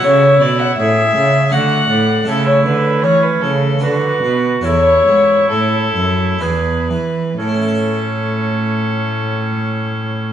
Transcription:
X:1
M:3/4
L:1/16
Q:1/4=72
K:A
V:1 name="Violin"
c2 d f e4 f4 | A c B2 c B A2 B4 | c4 A4 B4 | A12 |]
V:2 name="Oboe"
E4 G4 F2 D2 | E4 C2 z2 F4 | E8 G2 z2 | C12 |]
V:3 name="Harpsichord"
[CEA]8 [A,DA]4 | [A,EA]8 [DF]4 | [CEA]8 [DEG]4 | [A,,A,CEAe]12 |]
V:4 name="Harpsichord" clef=bass
C,2 B,,2 A,,2 C,2 D,2 A,,2 | C,2 D,2 E,2 C,2 D,2 B,,2 | E,,2 G,,2 A,,2 F,,2 E,,2 E,2 | z12 |]
V:5 name="Cello" clef=bass
C,2 B,,2 A,,2 C,2 D,2 A,,2 | C,2 D,2 E,2 C,2 D,2 B,,2 | E,,2 G,,2 A,,2 F,,2 E,,2 E,2 | A,,12 |]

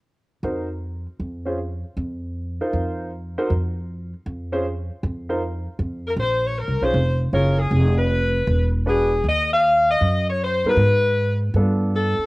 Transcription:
X:1
M:4/4
L:1/8
Q:"Swing" 1/4=156
K:Bbm
V:1 name="Saxophone section"
z8 | z8 | z8 | z6 z B |
c d B c2 z B A- | A _c4 z ^G2 | e f2 e2 d c _c- | _c3 z3 =A2 |]
V:2 name="Grand piano"
z2 [EGBc] z4 [DFAc] | z4 z [EFBc]3 | z [EGBc] z4 z [DFAc] | z3 [EFBc] z4 |
z3 [DFAc] z2 [DFAd] z | z6 [=D^F^G=B] z | z6 z [_CEGB] | z4 [=B,=DF=A]3 z |]
V:3 name="Upright bass" clef=bass
z2 F,,3 z F,,2- | F,, z F,,3 z F,,2- | F,, z F,,3 z F,,2- | F,, z F,,3 z F,,2 |
B,,,2- (3B,,, C,, _C,, F,,,2 G,,,2 | F,,,4 =E,,,4 | E,,4 G,,3 =G,, | A,,4 =G,,3 z |]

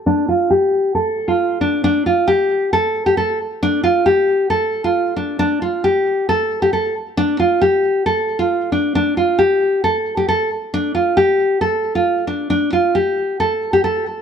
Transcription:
X:1
M:4/4
L:1/16
Q:1/4=135
K:Dm
V:1 name="Nylon-string guitar"
D2 F2 G4 A3 F3 D2 | D2 F2 G4 A3 G A2 z2 | D2 F2 G4 A3 F3 D2 | D2 F2 G4 A3 G A2 z2 |
D2 F2 G4 A3 F3 D2 | D2 F2 G4 A3 G A2 z2 | D2 F2 G4 A3 F3 D2 | D2 F2 G4 A3 G A2 z2 |]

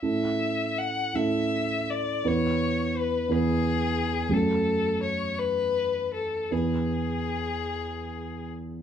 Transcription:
X:1
M:6/8
L:1/8
Q:3/8=54
K:A
V:1 name="Violin"
e2 f e2 d | c2 B G3 | A2 c B2 A | G4- G z |]
V:2 name="Grand piano"
[A,,CEA]3 [A,,CEA]3 | [E,,B,EB]3 [E,,B,EB]3 | [F,,A,CF]6 | [E,,B,EB]6 |]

